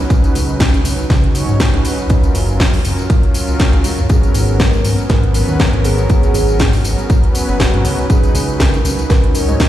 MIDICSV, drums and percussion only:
0, 0, Header, 1, 2, 480
1, 0, Start_track
1, 0, Tempo, 500000
1, 94, Time_signature, 4, 2, 24, 8
1, 9300, End_track
2, 0, Start_track
2, 0, Title_t, "Drums"
2, 98, Note_on_c, 9, 36, 118
2, 98, Note_on_c, 9, 42, 61
2, 102, Note_on_c, 9, 54, 43
2, 194, Note_off_c, 9, 36, 0
2, 194, Note_off_c, 9, 42, 0
2, 198, Note_off_c, 9, 54, 0
2, 229, Note_on_c, 9, 42, 37
2, 233, Note_on_c, 9, 54, 30
2, 325, Note_off_c, 9, 42, 0
2, 329, Note_off_c, 9, 54, 0
2, 339, Note_on_c, 9, 46, 101
2, 343, Note_on_c, 9, 54, 73
2, 435, Note_off_c, 9, 46, 0
2, 439, Note_off_c, 9, 54, 0
2, 474, Note_on_c, 9, 54, 28
2, 570, Note_off_c, 9, 54, 0
2, 576, Note_on_c, 9, 42, 63
2, 577, Note_on_c, 9, 36, 110
2, 578, Note_on_c, 9, 38, 120
2, 580, Note_on_c, 9, 54, 43
2, 672, Note_off_c, 9, 42, 0
2, 673, Note_off_c, 9, 36, 0
2, 674, Note_off_c, 9, 38, 0
2, 676, Note_off_c, 9, 54, 0
2, 710, Note_on_c, 9, 42, 37
2, 714, Note_on_c, 9, 54, 28
2, 806, Note_off_c, 9, 42, 0
2, 810, Note_off_c, 9, 54, 0
2, 816, Note_on_c, 9, 46, 111
2, 820, Note_on_c, 9, 54, 75
2, 912, Note_off_c, 9, 46, 0
2, 916, Note_off_c, 9, 54, 0
2, 950, Note_on_c, 9, 42, 36
2, 954, Note_on_c, 9, 54, 30
2, 1046, Note_off_c, 9, 42, 0
2, 1050, Note_off_c, 9, 54, 0
2, 1056, Note_on_c, 9, 36, 120
2, 1056, Note_on_c, 9, 42, 58
2, 1058, Note_on_c, 9, 38, 60
2, 1060, Note_on_c, 9, 54, 41
2, 1152, Note_off_c, 9, 36, 0
2, 1152, Note_off_c, 9, 42, 0
2, 1154, Note_off_c, 9, 38, 0
2, 1156, Note_off_c, 9, 54, 0
2, 1188, Note_on_c, 9, 42, 39
2, 1284, Note_off_c, 9, 42, 0
2, 1295, Note_on_c, 9, 46, 104
2, 1299, Note_on_c, 9, 54, 70
2, 1391, Note_off_c, 9, 46, 0
2, 1395, Note_off_c, 9, 54, 0
2, 1428, Note_on_c, 9, 42, 35
2, 1432, Note_on_c, 9, 54, 30
2, 1524, Note_off_c, 9, 42, 0
2, 1528, Note_off_c, 9, 54, 0
2, 1534, Note_on_c, 9, 42, 62
2, 1536, Note_on_c, 9, 36, 107
2, 1537, Note_on_c, 9, 38, 116
2, 1538, Note_on_c, 9, 54, 38
2, 1630, Note_off_c, 9, 42, 0
2, 1632, Note_off_c, 9, 36, 0
2, 1633, Note_off_c, 9, 38, 0
2, 1634, Note_off_c, 9, 54, 0
2, 1667, Note_on_c, 9, 42, 36
2, 1763, Note_off_c, 9, 42, 0
2, 1773, Note_on_c, 9, 46, 110
2, 1777, Note_on_c, 9, 54, 74
2, 1869, Note_off_c, 9, 46, 0
2, 1873, Note_off_c, 9, 54, 0
2, 1905, Note_on_c, 9, 42, 38
2, 1909, Note_on_c, 9, 54, 29
2, 2001, Note_off_c, 9, 42, 0
2, 2005, Note_off_c, 9, 54, 0
2, 2012, Note_on_c, 9, 42, 62
2, 2016, Note_on_c, 9, 36, 116
2, 2016, Note_on_c, 9, 54, 45
2, 2108, Note_off_c, 9, 42, 0
2, 2112, Note_off_c, 9, 36, 0
2, 2112, Note_off_c, 9, 54, 0
2, 2145, Note_on_c, 9, 42, 37
2, 2149, Note_on_c, 9, 54, 31
2, 2241, Note_off_c, 9, 42, 0
2, 2245, Note_off_c, 9, 54, 0
2, 2254, Note_on_c, 9, 46, 107
2, 2258, Note_on_c, 9, 54, 74
2, 2350, Note_off_c, 9, 46, 0
2, 2354, Note_off_c, 9, 54, 0
2, 2391, Note_on_c, 9, 54, 29
2, 2487, Note_off_c, 9, 54, 0
2, 2494, Note_on_c, 9, 42, 58
2, 2495, Note_on_c, 9, 36, 106
2, 2497, Note_on_c, 9, 38, 117
2, 2498, Note_on_c, 9, 54, 42
2, 2590, Note_off_c, 9, 42, 0
2, 2591, Note_off_c, 9, 36, 0
2, 2593, Note_off_c, 9, 38, 0
2, 2594, Note_off_c, 9, 54, 0
2, 2627, Note_on_c, 9, 46, 59
2, 2631, Note_on_c, 9, 54, 28
2, 2723, Note_off_c, 9, 46, 0
2, 2727, Note_off_c, 9, 54, 0
2, 2733, Note_on_c, 9, 46, 111
2, 2737, Note_on_c, 9, 54, 75
2, 2829, Note_off_c, 9, 46, 0
2, 2833, Note_off_c, 9, 54, 0
2, 2866, Note_on_c, 9, 42, 37
2, 2870, Note_on_c, 9, 54, 31
2, 2962, Note_off_c, 9, 42, 0
2, 2966, Note_off_c, 9, 54, 0
2, 2974, Note_on_c, 9, 42, 61
2, 2975, Note_on_c, 9, 36, 122
2, 2978, Note_on_c, 9, 54, 42
2, 3070, Note_off_c, 9, 42, 0
2, 3071, Note_off_c, 9, 36, 0
2, 3074, Note_off_c, 9, 54, 0
2, 3104, Note_on_c, 9, 42, 36
2, 3200, Note_off_c, 9, 42, 0
2, 3210, Note_on_c, 9, 46, 100
2, 3214, Note_on_c, 9, 54, 73
2, 3306, Note_off_c, 9, 46, 0
2, 3310, Note_off_c, 9, 54, 0
2, 3343, Note_on_c, 9, 42, 36
2, 3347, Note_on_c, 9, 54, 31
2, 3439, Note_off_c, 9, 42, 0
2, 3443, Note_off_c, 9, 54, 0
2, 3451, Note_on_c, 9, 42, 60
2, 3454, Note_on_c, 9, 36, 103
2, 3454, Note_on_c, 9, 38, 107
2, 3455, Note_on_c, 9, 54, 40
2, 3547, Note_off_c, 9, 42, 0
2, 3550, Note_off_c, 9, 36, 0
2, 3550, Note_off_c, 9, 38, 0
2, 3551, Note_off_c, 9, 54, 0
2, 3582, Note_on_c, 9, 42, 35
2, 3678, Note_off_c, 9, 42, 0
2, 3688, Note_on_c, 9, 46, 107
2, 3692, Note_on_c, 9, 54, 77
2, 3784, Note_off_c, 9, 46, 0
2, 3788, Note_off_c, 9, 54, 0
2, 3822, Note_on_c, 9, 42, 35
2, 3826, Note_on_c, 9, 54, 30
2, 3918, Note_off_c, 9, 42, 0
2, 3922, Note_off_c, 9, 54, 0
2, 3931, Note_on_c, 9, 42, 61
2, 3934, Note_on_c, 9, 36, 113
2, 3934, Note_on_c, 9, 54, 46
2, 4027, Note_off_c, 9, 42, 0
2, 4030, Note_off_c, 9, 36, 0
2, 4030, Note_off_c, 9, 54, 0
2, 4064, Note_on_c, 9, 42, 37
2, 4068, Note_on_c, 9, 54, 31
2, 4160, Note_off_c, 9, 42, 0
2, 4164, Note_off_c, 9, 54, 0
2, 4171, Note_on_c, 9, 46, 102
2, 4175, Note_on_c, 9, 54, 78
2, 4267, Note_off_c, 9, 46, 0
2, 4271, Note_off_c, 9, 54, 0
2, 4305, Note_on_c, 9, 42, 35
2, 4309, Note_on_c, 9, 54, 31
2, 4401, Note_off_c, 9, 42, 0
2, 4405, Note_off_c, 9, 54, 0
2, 4412, Note_on_c, 9, 42, 61
2, 4414, Note_on_c, 9, 36, 104
2, 4414, Note_on_c, 9, 38, 106
2, 4416, Note_on_c, 9, 54, 44
2, 4508, Note_off_c, 9, 42, 0
2, 4510, Note_off_c, 9, 36, 0
2, 4510, Note_off_c, 9, 38, 0
2, 4512, Note_off_c, 9, 54, 0
2, 4544, Note_on_c, 9, 42, 36
2, 4548, Note_on_c, 9, 54, 31
2, 4640, Note_off_c, 9, 42, 0
2, 4644, Note_off_c, 9, 54, 0
2, 4651, Note_on_c, 9, 46, 100
2, 4655, Note_on_c, 9, 54, 80
2, 4747, Note_off_c, 9, 46, 0
2, 4751, Note_off_c, 9, 54, 0
2, 4785, Note_on_c, 9, 42, 36
2, 4789, Note_on_c, 9, 54, 33
2, 4881, Note_off_c, 9, 42, 0
2, 4885, Note_off_c, 9, 54, 0
2, 4892, Note_on_c, 9, 42, 61
2, 4894, Note_on_c, 9, 36, 121
2, 4894, Note_on_c, 9, 38, 55
2, 4896, Note_on_c, 9, 54, 43
2, 4988, Note_off_c, 9, 42, 0
2, 4990, Note_off_c, 9, 36, 0
2, 4990, Note_off_c, 9, 38, 0
2, 4992, Note_off_c, 9, 54, 0
2, 5025, Note_on_c, 9, 42, 37
2, 5121, Note_off_c, 9, 42, 0
2, 5130, Note_on_c, 9, 46, 103
2, 5134, Note_on_c, 9, 54, 72
2, 5226, Note_off_c, 9, 46, 0
2, 5230, Note_off_c, 9, 54, 0
2, 5268, Note_on_c, 9, 54, 31
2, 5364, Note_off_c, 9, 54, 0
2, 5372, Note_on_c, 9, 42, 61
2, 5374, Note_on_c, 9, 36, 96
2, 5374, Note_on_c, 9, 38, 108
2, 5376, Note_on_c, 9, 54, 43
2, 5468, Note_off_c, 9, 42, 0
2, 5470, Note_off_c, 9, 36, 0
2, 5470, Note_off_c, 9, 38, 0
2, 5472, Note_off_c, 9, 54, 0
2, 5504, Note_on_c, 9, 42, 37
2, 5600, Note_off_c, 9, 42, 0
2, 5611, Note_on_c, 9, 46, 109
2, 5615, Note_on_c, 9, 54, 82
2, 5707, Note_off_c, 9, 46, 0
2, 5711, Note_off_c, 9, 54, 0
2, 5744, Note_on_c, 9, 42, 34
2, 5748, Note_on_c, 9, 54, 32
2, 5840, Note_off_c, 9, 42, 0
2, 5844, Note_off_c, 9, 54, 0
2, 5851, Note_on_c, 9, 42, 64
2, 5854, Note_on_c, 9, 36, 107
2, 5855, Note_on_c, 9, 54, 46
2, 5947, Note_off_c, 9, 42, 0
2, 5950, Note_off_c, 9, 36, 0
2, 5951, Note_off_c, 9, 54, 0
2, 5983, Note_on_c, 9, 42, 37
2, 5987, Note_on_c, 9, 54, 33
2, 6079, Note_off_c, 9, 42, 0
2, 6083, Note_off_c, 9, 54, 0
2, 6090, Note_on_c, 9, 46, 99
2, 6094, Note_on_c, 9, 54, 78
2, 6186, Note_off_c, 9, 46, 0
2, 6190, Note_off_c, 9, 54, 0
2, 6223, Note_on_c, 9, 42, 36
2, 6227, Note_on_c, 9, 54, 33
2, 6319, Note_off_c, 9, 42, 0
2, 6323, Note_off_c, 9, 54, 0
2, 6331, Note_on_c, 9, 42, 62
2, 6334, Note_on_c, 9, 36, 101
2, 6334, Note_on_c, 9, 38, 112
2, 6335, Note_on_c, 9, 54, 45
2, 6427, Note_off_c, 9, 42, 0
2, 6430, Note_off_c, 9, 36, 0
2, 6430, Note_off_c, 9, 38, 0
2, 6431, Note_off_c, 9, 54, 0
2, 6463, Note_on_c, 9, 46, 56
2, 6467, Note_on_c, 9, 54, 31
2, 6559, Note_off_c, 9, 46, 0
2, 6563, Note_off_c, 9, 54, 0
2, 6571, Note_on_c, 9, 46, 100
2, 6575, Note_on_c, 9, 54, 80
2, 6667, Note_off_c, 9, 46, 0
2, 6671, Note_off_c, 9, 54, 0
2, 6706, Note_on_c, 9, 42, 39
2, 6710, Note_on_c, 9, 54, 33
2, 6802, Note_off_c, 9, 42, 0
2, 6806, Note_off_c, 9, 54, 0
2, 6813, Note_on_c, 9, 42, 62
2, 6814, Note_on_c, 9, 36, 116
2, 6817, Note_on_c, 9, 54, 43
2, 6909, Note_off_c, 9, 42, 0
2, 6910, Note_off_c, 9, 36, 0
2, 6913, Note_off_c, 9, 54, 0
2, 6946, Note_on_c, 9, 42, 40
2, 7042, Note_off_c, 9, 42, 0
2, 7054, Note_on_c, 9, 46, 97
2, 7058, Note_on_c, 9, 54, 82
2, 7150, Note_off_c, 9, 46, 0
2, 7154, Note_off_c, 9, 54, 0
2, 7187, Note_on_c, 9, 42, 38
2, 7191, Note_on_c, 9, 54, 34
2, 7283, Note_off_c, 9, 42, 0
2, 7287, Note_off_c, 9, 54, 0
2, 7294, Note_on_c, 9, 36, 95
2, 7294, Note_on_c, 9, 42, 63
2, 7297, Note_on_c, 9, 38, 110
2, 7298, Note_on_c, 9, 54, 43
2, 7390, Note_off_c, 9, 36, 0
2, 7390, Note_off_c, 9, 42, 0
2, 7393, Note_off_c, 9, 38, 0
2, 7394, Note_off_c, 9, 54, 0
2, 7428, Note_on_c, 9, 42, 37
2, 7524, Note_off_c, 9, 42, 0
2, 7533, Note_on_c, 9, 46, 107
2, 7537, Note_on_c, 9, 54, 82
2, 7629, Note_off_c, 9, 46, 0
2, 7633, Note_off_c, 9, 54, 0
2, 7667, Note_on_c, 9, 42, 38
2, 7670, Note_on_c, 9, 54, 33
2, 7763, Note_off_c, 9, 42, 0
2, 7766, Note_off_c, 9, 54, 0
2, 7773, Note_on_c, 9, 42, 68
2, 7775, Note_on_c, 9, 36, 109
2, 7777, Note_on_c, 9, 54, 49
2, 7869, Note_off_c, 9, 42, 0
2, 7871, Note_off_c, 9, 36, 0
2, 7873, Note_off_c, 9, 54, 0
2, 7906, Note_on_c, 9, 42, 42
2, 7909, Note_on_c, 9, 54, 33
2, 8002, Note_off_c, 9, 42, 0
2, 8005, Note_off_c, 9, 54, 0
2, 8013, Note_on_c, 9, 46, 97
2, 8017, Note_on_c, 9, 54, 83
2, 8109, Note_off_c, 9, 46, 0
2, 8113, Note_off_c, 9, 54, 0
2, 8147, Note_on_c, 9, 42, 39
2, 8151, Note_on_c, 9, 54, 34
2, 8243, Note_off_c, 9, 42, 0
2, 8247, Note_off_c, 9, 54, 0
2, 8255, Note_on_c, 9, 36, 101
2, 8256, Note_on_c, 9, 42, 66
2, 8258, Note_on_c, 9, 38, 115
2, 8259, Note_on_c, 9, 54, 48
2, 8351, Note_off_c, 9, 36, 0
2, 8352, Note_off_c, 9, 42, 0
2, 8354, Note_off_c, 9, 38, 0
2, 8355, Note_off_c, 9, 54, 0
2, 8388, Note_on_c, 9, 42, 39
2, 8392, Note_on_c, 9, 54, 33
2, 8484, Note_off_c, 9, 42, 0
2, 8488, Note_off_c, 9, 54, 0
2, 8495, Note_on_c, 9, 46, 105
2, 8499, Note_on_c, 9, 54, 84
2, 8591, Note_off_c, 9, 46, 0
2, 8595, Note_off_c, 9, 54, 0
2, 8627, Note_on_c, 9, 42, 40
2, 8631, Note_on_c, 9, 54, 34
2, 8723, Note_off_c, 9, 42, 0
2, 8727, Note_off_c, 9, 54, 0
2, 8736, Note_on_c, 9, 36, 114
2, 8736, Note_on_c, 9, 42, 62
2, 8738, Note_on_c, 9, 38, 55
2, 8740, Note_on_c, 9, 54, 46
2, 8832, Note_off_c, 9, 36, 0
2, 8832, Note_off_c, 9, 42, 0
2, 8834, Note_off_c, 9, 38, 0
2, 8836, Note_off_c, 9, 54, 0
2, 8867, Note_on_c, 9, 42, 41
2, 8963, Note_off_c, 9, 42, 0
2, 8972, Note_on_c, 9, 46, 97
2, 8976, Note_on_c, 9, 54, 78
2, 9068, Note_off_c, 9, 46, 0
2, 9072, Note_off_c, 9, 54, 0
2, 9107, Note_on_c, 9, 42, 38
2, 9111, Note_on_c, 9, 54, 35
2, 9203, Note_off_c, 9, 42, 0
2, 9207, Note_off_c, 9, 54, 0
2, 9214, Note_on_c, 9, 42, 65
2, 9216, Note_on_c, 9, 36, 98
2, 9216, Note_on_c, 9, 38, 112
2, 9218, Note_on_c, 9, 54, 44
2, 9300, Note_off_c, 9, 36, 0
2, 9300, Note_off_c, 9, 38, 0
2, 9300, Note_off_c, 9, 42, 0
2, 9300, Note_off_c, 9, 54, 0
2, 9300, End_track
0, 0, End_of_file